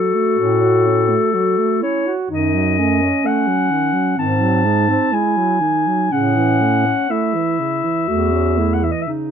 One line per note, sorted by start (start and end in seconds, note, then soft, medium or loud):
0.00 0.15 F#3 soft
0.00 1.32 F#4 medium
0.00 1.82 A4 medium
0.14 0.37 A3 soft
0.37 1.17 A2 medium
0.37 0.64 C#4 soft
0.62 0.87 F#4 soft
0.86 1.10 C#4 soft
1.09 1.35 A3 soft
1.33 1.59 F#3 soft
1.33 1.83 F#4 soft
1.58 1.84 A3 soft
1.82 2.08 C#4 soft
1.82 2.13 E4 soft
1.82 2.13 C#5 soft
2.07 2.30 F#4 soft
2.30 3.10 F#2 soft
2.30 2.55 D#3 soft
2.30 2.80 D#4 soft
2.30 3.27 D#5 medium
2.54 2.81 F#3 soft
2.79 3.03 A3 soft
2.79 4.19 C#4 soft
3.02 3.26 C#4 soft
3.25 3.49 A3 soft
3.25 4.18 F#5 medium
3.47 3.72 F#3 soft
3.70 3.94 D#3 soft
3.93 4.16 F#3 soft
4.17 4.97 G#2 soft
4.17 4.42 D#3 soft
4.17 4.67 C4 soft
4.17 5.15 A5 medium
4.41 4.66 F#3 soft
4.65 4.90 G#3 soft
4.65 5.14 D#4 soft
4.88 5.14 C4 soft
5.12 5.38 G#3 soft
5.12 5.61 E4 soft
5.12 6.14 G#5 medium
5.37 5.62 F#3 soft
5.60 5.88 D#3 soft
5.60 6.13 D#4 soft
5.87 6.11 F#3 soft
6.11 6.93 A2 soft
6.11 6.38 C#3 soft
6.11 7.09 C#4 medium
6.11 7.11 F#5 medium
6.36 6.62 E3 soft
6.60 6.87 A3 soft
6.85 7.12 C#4 soft
7.10 7.36 A3 soft
7.10 8.10 E4 soft
7.10 8.74 E5 medium
7.34 7.61 E3 soft
7.60 7.86 C#3 soft
7.84 8.08 E3 soft
8.08 8.92 E2 soft
8.08 8.33 A3 soft
8.08 8.60 F#4 soft
8.32 8.59 C#4 soft
8.57 8.84 A3 soft
8.57 8.91 E4 soft
8.73 8.84 F#5 soft
8.82 9.09 E3 soft
8.82 8.93 E5 soft
8.91 9.03 D#5 soft
9.02 9.09 E5 soft
9.07 9.31 C#3 soft
9.07 9.31 D#4 soft